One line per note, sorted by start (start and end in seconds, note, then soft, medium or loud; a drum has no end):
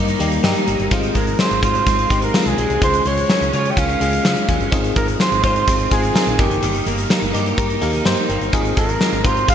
0.00 0.14 G2 medium
0.00 0.90 D#3 medium
0.00 0.19 G3 medium
0.00 0.19 A#3 medium
0.00 0.20 A#3 medium
0.00 0.20 D#4 medium
0.00 0.43 D#4 medium
0.00 0.21 G4 medium
0.00 0.96 G4 medium
0.00 0.93 A#4 medium
0.08 closed hi-hat soft
0.19 0.38 D#2 medium
0.19 0.41 G3 loud
0.19 0.41 A#3 loud
0.19 0.67 A#3 medium
0.19 0.41 D#4 loud
0.19 0.42 G4 loud
0.19 closed hi-hat medium
0.32 closed hi-hat soft
0.43 0.52 G2 loud
0.43 0.65 G3 loud
0.43 0.65 A#3 loud
0.43 0.96 D#4 medium
0.43 0.65 D#4 loud
0.43 0.65 G4 loud
0.43 snare loud
0.56 closed hi-hat soft
0.67 0.76 G1 medium
0.67 0.89 G3 medium
0.67 0.89 A#3 medium
0.67 0.96 A#3 medium
0.67 0.89 D#4 medium
0.67 0.89 G4 medium
0.67 closed hi-hat medium
0.80 0.88 G1 medium
0.80 closed hi-hat soft
0.91 1.09 G#1 loud
0.91 2.82 D#3 medium
0.91 1.13 G#3 loud
0.91 1.13 C4 loud
0.91 1.13 D#4 loud
0.91 1.13 F4 loud
0.91 kick loud
0.91 closed hi-hat medium
1.03 closed hi-hat soft
1.15 1.33 G#1 medium
1.15 1.36 G#3 medium
1.15 2.10 G#3 medium
1.15 1.37 C4 medium
1.15 1.37 F4 medium
1.15 1.41 A#4 medium
1.15 kick medium
1.15 closed hi-hat medium
1.27 closed hi-hat soft
1.38 1.60 G#3 medium
1.38 1.60 C4 medium
1.38 1.86 C4 medium
1.38 1.60 D#4 medium
1.38 1.61 G#4 medium
1.38 1.63 C5 medium
1.38 snare loud
1.51 1.60 G#1 medium
1.51 closed hi-hat soft
1.62 1.81 G#2 medium
1.62 1.84 G#3 medium
1.62 1.84 C4 medium
1.62 1.84 D#4 medium
1.62 1.84 F4 medium
1.62 3.53 F4 medium
1.62 2.19 C5 medium
1.62 kick medium
1.62 closed hi-hat medium
1.75 closed hi-hat soft
1.86 2.04 G#1 medium
1.86 2.08 G#3 medium
1.86 2.08 C4 medium
1.86 2.34 C4 medium
1.86 2.08 D#4 medium
1.86 2.08 F4 medium
1.86 kick medium
1.86 closed hi-hat medium
1.99 closed hi-hat soft
2.10 2.28 G#1 medium
2.10 2.31 G#3 medium
2.10 2.58 G#3 medium
2.10 2.32 C4 medium
2.10 2.32 D#4 medium
2.10 2.32 G4 loud
2.10 kick medium
2.10 closed hi-hat medium
2.22 2.49 A#4 medium
2.22 closed hi-hat soft
2.34 2.55 G#3 medium
2.34 2.55 C4 medium
2.34 2.87 C4 medium
2.34 2.56 D#4 medium
2.34 2.56 F4 loud
2.34 snare loud
2.46 2.55 C2 medium
2.46 2.82 G#4 medium
2.46 closed hi-hat medium
2.57 2.67 B1 medium
2.57 2.79 G#3 medium
2.57 2.81 G#3 medium
2.57 2.79 C4 medium
2.57 2.79 D#4 medium
2.57 2.80 G#4 medium
2.57 closed hi-hat medium
2.70 2.79 C2 medium
2.70 closed hi-hat soft
2.81 3.00 C#2 medium
2.81 3.03 G#3 medium
2.81 3.06 G#3 medium
2.81 3.03 C#4 medium
2.81 3.03 F4 medium
2.81 3.04 G#4 loud
2.81 3.08 C5 loud
2.81 kick loud
2.81 closed hi-hat medium
2.94 closed hi-hat soft
3.05 3.23 C#2 medium
3.05 3.27 G#3 medium
3.05 4.01 G#3 medium
3.05 3.27 C#4 medium
3.05 3.27 F4 medium
3.05 3.27 G#4 medium
3.05 3.54 C#5 medium
3.05 closed hi-hat medium
3.17 closed hi-hat soft
3.29 3.50 G#3 medium
3.29 3.51 C#4 medium
3.29 3.76 C#4 medium
3.29 3.51 F4 medium
3.29 3.51 A#4 medium
3.29 snare loud
3.41 3.50 C#2 medium
3.41 closed hi-hat soft
3.52 3.71 C#3 medium
3.52 3.74 G#3 medium
3.52 3.74 C#4 medium
3.52 3.75 F4 medium
3.52 4.77 F4 medium
3.52 3.75 G#4 medium
3.52 3.72 C#5 medium
3.52 closed hi-hat medium
3.65 closed hi-hat soft
3.71 3.79 G5 medium
3.76 3.95 C#2 medium
3.76 3.98 G#3 medium
3.76 3.98 C#4 medium
3.76 4.24 C#4 medium
3.76 3.98 F4 medium
3.76 3.98 G#4 medium
3.76 4.49 F5 medium
3.76 kick medium
3.76 closed hi-hat medium
3.89 closed hi-hat soft
4.00 4.19 C#2 medium
4.00 4.22 G#3 medium
4.00 4.48 G#3 medium
4.00 4.22 C#4 medium
4.00 4.22 F4 medium
4.00 4.22 G#4 loud
4.00 closed hi-hat medium
4.13 closed hi-hat soft
4.24 4.34 C#3 medium
4.24 4.46 G#3 medium
4.24 4.46 C#4 medium
4.24 4.77 C#4 medium
4.24 4.46 F4 medium
4.24 4.46 G#4 medium
4.24 snare loud
4.37 closed hi-hat soft
4.48 4.58 D#2 medium
4.48 4.69 G#3 medium
4.48 4.77 G#3 medium
4.48 4.70 C#4 medium
4.48 4.70 F4 medium
4.48 4.70 G#4 medium
4.48 kick medium
4.48 closed hi-hat medium
4.60 4.69 G1 medium
4.60 closed hi-hat soft
4.71 4.90 G#1 loud
4.71 6.38 D#3 medium
4.71 4.93 C4 loud
4.71 4.93 D#4 loud
4.71 4.94 F4 loud
4.71 4.94 G#4 loud
4.71 kick loud
4.71 closed hi-hat medium
4.84 closed hi-hat soft
4.95 5.14 G#1 medium
4.95 5.90 G#3 medium
4.95 5.17 C4 medium
4.95 5.17 D#4 medium
4.95 5.18 F4 medium
4.95 5.18 G#4 medium
4.95 5.07 A#4 medium
4.95 kick medium
4.95 closed hi-hat medium
5.08 closed hi-hat soft
5.19 5.41 C4 medium
5.19 5.67 C4 medium
5.19 5.41 D#4 medium
5.19 5.42 F4 medium
5.19 5.42 G#4 medium
5.19 5.43 C5 loud
5.19 snare loud
5.32 5.41 G#1 medium
5.32 closed hi-hat soft
5.43 5.62 G#2 medium
5.43 5.65 C4 medium
5.43 5.65 D#4 medium
5.43 5.65 F4 medium
5.43 6.44 F4 medium
5.43 5.65 G#4 medium
5.43 5.88 C5 medium
5.43 kick medium
5.43 closed hi-hat medium
5.56 closed hi-hat soft
5.67 5.85 G#1 medium
5.67 5.89 C4 medium
5.67 6.14 C4 medium
5.67 5.89 D#4 medium
5.67 5.89 F4 medium
5.67 5.89 G#4 medium
5.67 kick medium
5.67 closed hi-hat medium
5.80 closed hi-hat soft
5.90 6.09 G#1 loud
5.90 6.44 G#3 medium
5.90 6.12 C4 medium
5.90 6.13 D#4 medium
5.90 6.13 F4 medium
5.90 6.13 G#4 medium
5.90 6.41 G#4 medium
5.90 kick medium
5.90 closed hi-hat medium
6.03 closed hi-hat medium
6.14 6.36 C4 medium
6.14 6.44 C4 medium
6.14 6.36 D#4 medium
6.14 6.36 F4 medium
6.14 6.37 A#4 loud
6.14 snare loud
6.27 6.36 A#1 medium
6.27 closed hi-hat soft
6.38 6.48 G1 medium
6.38 6.63 D#3 medium
6.38 6.81 A#3 medium
6.38 6.82 D#4 medium
6.38 6.82 G4 medium
6.38 6.87 G4 medium
6.38 6.82 A#4 medium
6.38 kick loud
6.38 closed hi-hat medium
6.51 6.60 F#1 medium
6.51 closed hi-hat soft
6.62 6.80 G1 medium
6.62 8.52 D#3 medium
6.62 closed hi-hat medium
6.74 closed hi-hat medium
6.86 7.04 G1 medium
6.86 7.08 A#3 medium
6.86 7.81 A#3 medium
6.86 7.08 D#4 medium
6.86 7.08 G4 medium
6.86 7.08 A#4 medium
6.86 closed hi-hat medium
6.98 closed hi-hat soft
7.09 7.31 A#3 medium
7.09 7.31 D#4 medium
7.09 7.58 D#4 medium
7.09 7.32 G4 medium
7.09 7.32 A#4 medium
7.09 snare loud
7.22 7.31 G1 medium
7.22 closed hi-hat soft
7.33 7.52 G2 medium
7.33 7.55 A#3 medium
7.33 7.55 D#4 medium
7.33 7.55 G4 medium
7.33 8.58 G4 medium
7.33 7.56 A#4 medium
7.33 closed hi-hat medium
7.46 closed hi-hat soft
7.57 7.76 G2 medium
7.57 7.79 A#3 medium
7.57 7.79 D#4 medium
7.57 8.05 D#4 medium
7.57 7.79 G4 medium
7.57 7.80 A#4 medium
7.57 kick medium
7.57 closed hi-hat medium
7.70 closed hi-hat soft
7.81 8.00 D#2 medium
7.81 8.03 A#3 loud
7.81 8.28 A#3 medium
7.81 8.03 D#4 loud
7.81 8.03 G4 loud
7.81 8.04 A#4 loud
7.81 closed hi-hat medium
7.93 closed hi-hat soft
8.05 8.14 G2 loud
8.05 8.27 A#3 loud
8.05 8.27 D#4 loud
8.05 8.58 D#4 medium
8.05 8.27 G4 loud
8.05 8.27 C5 loud
8.05 snare loud
8.17 closed hi-hat medium
8.29 8.38 G1 medium
8.29 8.50 A#3 medium
8.29 8.58 A#3 medium
8.29 8.51 D#4 medium
8.29 8.51 G4 medium
8.29 8.51 A#4 medium
8.29 closed hi-hat medium
8.41 8.50 G1 medium
8.41 closed hi-hat soft
8.53 8.71 G#1 medium
8.53 9.55 D#3 medium
8.53 8.74 C4 loud
8.53 8.75 D#4 loud
8.53 8.75 F4 loud
8.53 8.75 G#4 loud
8.53 kick loud
8.53 closed hi-hat medium
8.65 closed hi-hat medium
8.76 8.95 G#1 medium
8.76 9.55 G#3 medium
8.76 8.98 C4 medium
8.76 8.98 D#4 medium
8.76 8.98 F4 medium
8.76 8.99 G#4 medium
8.76 9.27 A#4 medium
8.76 kick medium
8.76 closed hi-hat medium
8.89 closed hi-hat medium
9.00 9.22 C4 medium
9.00 9.47 C4 medium
9.00 9.22 D#4 medium
9.00 9.22 F4 medium
9.00 9.23 G#4 medium
9.00 snare loud
9.12 9.21 G#1 loud
9.12 closed hi-hat soft
9.24 9.42 G#2 medium
9.24 9.46 C4 medium
9.24 9.46 D#4 medium
9.24 9.55 F4 medium
9.24 9.46 F4 medium
9.24 9.46 G4 medium
9.24 9.49 C5 medium
9.24 kick loud
9.24 closed hi-hat medium
9.37 closed hi-hat soft
9.48 9.55 G#1 medium
9.48 9.55 C4 medium
9.48 9.55 D#4 medium
9.48 9.55 F4 medium
9.48 9.55 G#4 medium
9.48 9.55 F5 loud
9.48 kick medium
9.48 closed hi-hat medium